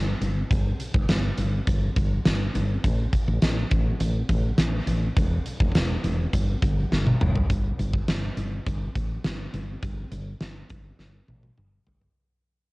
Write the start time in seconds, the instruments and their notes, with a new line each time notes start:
Already playing: fretless electric bass G1
0.21 fretless electric bass G1, closed hi-hat
0.51 fretless electric bass G1, kick, closed hi-hat
0.80 closed hi-hat
0.94 fretless electric bass G1, kick
1.09 fretless electric bass G1, snare, closed hi-hat, tambourine
1.38 fretless electric bass G1, closed hi-hat
1.67 fretless electric bass G1, kick, closed hi-hat
1.96 fretless electric bass G1, kick, closed hi-hat
2.25 fretless electric bass G1, snare, closed hi-hat, tambourine
2.55 fretless electric bass G1, closed hi-hat
2.84 fretless electric bass A1, kick, closed hi-hat
3.13 kick, closed hi-hat
3.28 fretless electric bass A1
3.42 fretless electric bass A1, snare, closed hi-hat, tambourine
3.71 fretless electric bass A1, kick, closed hi-hat
4.00 fretless electric bass A1, closed hi-hat
4.29 fretless electric bass A1, kick, closed hi-hat
4.58 fretless electric bass A1, snare, closed hi-hat, tambourine
4.87 fretless electric bass A1, closed hi-hat
5.17 fretless electric bass E1, kick, closed hi-hat
5.46 closed hi-hat
5.60 fretless electric bass E1, kick
5.75 fretless electric bass E1, snare, closed hi-hat, tambourine
6.04 fretless electric bass E1, closed hi-hat
6.33 fretless electric bass G1, kick, closed hi-hat
6.62 fretless electric bass G1, kick, closed hi-hat
6.92 fretless electric bass G1, snare
7.07 high tom
7.21 fretless electric bass G1, mid tom
7.35 floor tom
7.50 fretless electric bass G1, kick, closed hi-hat
7.79 fretless electric bass G1, closed hi-hat
7.93 kick
8.08 fretless electric bass G1, snare, closed hi-hat
8.37 fretless electric bass G1, closed hi-hat
8.66 fretless electric bass G1, kick, closed hi-hat
8.95 fretless electric bass A1, kick, closed hi-hat
9.24 fretless electric bass G1, snare, closed hi-hat
9.54 fretless electric bass G1, closed hi-hat
9.83 fretless electric bass G1, kick, closed hi-hat
10.12 fretless electric bass G1, closed hi-hat
10.41 fretless electric bass G1, snare, closed hi-hat
10.70 fretless electric bass G1, kick, closed hi-hat
10.99 fretless electric bass G1, snare
11.28 fretless electric bass A1, high tom
11.43 high tom
11.57 fretless electric bass G1, mid tom
11.87 fretless electric bass G1, floor tom
12.01 floor tom